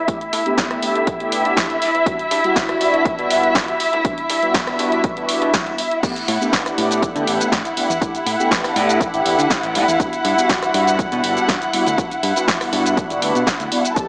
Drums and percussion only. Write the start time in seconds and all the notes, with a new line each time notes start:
0.08 kick, closed hi-hat
0.21 closed hi-hat
0.33 open hi-hat
0.46 closed hi-hat
0.58 kick, snare, closed hi-hat
0.71 cross-stick, closed hi-hat
0.83 open hi-hat
0.96 closed hi-hat
1.07 kick, closed hi-hat
1.20 closed hi-hat
1.32 open hi-hat
1.45 closed hi-hat
1.57 kick, snare, closed hi-hat
1.70 closed hi-hat
1.82 open hi-hat
1.95 closed hi-hat
2.06 kick, closed hi-hat
2.19 closed hi-hat
2.31 open hi-hat
2.44 closed hi-hat
2.56 kick, snare, closed hi-hat
2.69 cross-stick, closed hi-hat
2.81 open hi-hat
2.94 closed hi-hat
3.05 kick, closed hi-hat
3.19 closed hi-hat
3.31 open hi-hat
3.44 closed hi-hat
3.55 kick, snare, closed hi-hat
3.68 closed hi-hat
3.80 open hi-hat
3.93 closed hi-hat
4.05 kick, closed hi-hat
4.18 closed hi-hat
4.30 open hi-hat
4.43 closed hi-hat
4.54 kick, snare, closed hi-hat
4.67 cross-stick, closed hi-hat
4.79 open hi-hat
4.92 closed hi-hat
5.04 kick, closed hi-hat
5.17 closed hi-hat
5.29 open hi-hat
5.42 closed hi-hat
5.54 kick, snare, closed hi-hat
5.67 closed hi-hat
5.78 open hi-hat
5.91 closed hi-hat
6.03 kick, closed hi-hat, crash, shaker
6.16 closed hi-hat, shaker
6.28 open hi-hat
6.42 shaker
6.53 kick, snare, closed hi-hat, shaker
6.66 cross-stick, closed hi-hat, shaker
6.78 open hi-hat
6.91 closed hi-hat, shaker
7.02 kick, closed hi-hat, shaker
7.16 closed hi-hat, shaker
7.27 open hi-hat
7.40 closed hi-hat, shaker
7.52 kick, snare, closed hi-hat, shaker
7.65 closed hi-hat, shaker
7.77 open hi-hat
7.90 closed hi-hat, shaker
8.02 kick, closed hi-hat, shaker
8.15 closed hi-hat, shaker
8.26 open hi-hat
8.40 shaker
8.51 kick, snare, closed hi-hat, shaker
8.64 cross-stick, open hi-hat, shaker
8.76 open hi-hat
8.89 closed hi-hat, shaker
9.01 kick, closed hi-hat, shaker
9.14 closed hi-hat, shaker
9.26 open hi-hat
9.39 closed hi-hat, shaker
9.50 kick, snare, closed hi-hat, shaker
9.63 closed hi-hat, shaker
9.75 open hi-hat
9.88 closed hi-hat, shaker
10.00 kick, closed hi-hat, shaker
10.13 closed hi-hat, shaker
10.25 open hi-hat
10.38 shaker
10.49 kick, snare, closed hi-hat, shaker
10.63 cross-stick, closed hi-hat, shaker
10.74 open hi-hat
10.87 closed hi-hat, shaker
10.99 kick, closed hi-hat, shaker
11.12 closed hi-hat, shaker
11.24 open hi-hat
11.37 closed hi-hat, shaker
11.48 kick, snare, closed hi-hat, shaker
11.62 closed hi-hat, shaker
11.73 open hi-hat
11.87 closed hi-hat, shaker
11.98 kick, closed hi-hat, shaker
12.11 closed hi-hat, shaker
12.23 open hi-hat
12.36 closed hi-hat, shaker
12.48 kick, snare, closed hi-hat, shaker
12.61 cross-stick, open hi-hat, shaker
12.73 open hi-hat
12.86 closed hi-hat, shaker
12.97 kick, closed hi-hat, shaker
13.10 closed hi-hat, shaker
13.22 open hi-hat
13.35 closed hi-hat, shaker
13.47 kick, snare, closed hi-hat, shaker
13.60 closed hi-hat, shaker
13.72 open hi-hat
13.85 closed hi-hat, shaker
13.96 kick, closed hi-hat, shaker